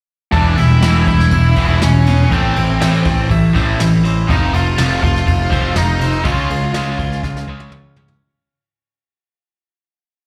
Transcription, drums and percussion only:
0.32 kick, ride
0.57 ride
0.82 snare, ride
1.07 kick, ride
1.20 snare
1.31 kick, ride
1.56 kick, ride
1.82 snare, ride
2.06 ride
2.31 kick, ride
2.56 ride
2.81 snare, ride
3.05 kick, ride
3.30 kick, ride
3.55 kick, ride
3.80 snare, ride
4.05 ride
4.29 kick, ride
4.54 ride
4.78 snare, ride
5.03 kick, ride
5.16 snare
5.27 kick, ride
5.52 kick, ride
5.76 snare, ride
6.01 ride
6.25 kick, ride
6.50 ride
6.74 snare, ride
6.99 kick, ride
7.12 snare
7.23 kick, snare
7.37 snare
7.60 high tom
7.72 mid tom
7.96 floor tom
8.08 floor tom

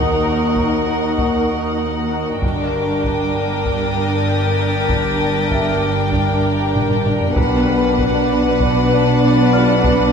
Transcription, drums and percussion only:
0.56 taiko
1.18 taiko
2.42 taiko
3.04 taiko
3.66 taiko
4.89 taiko
5.51 taiko
6.13 taiko
6.75 taiko low-mid
6.90 taiko low-mid
7.06 taiko low-mid
7.21 taiko low
7.36 taiko
7.99 taiko
8.61 taiko
9.84 taiko

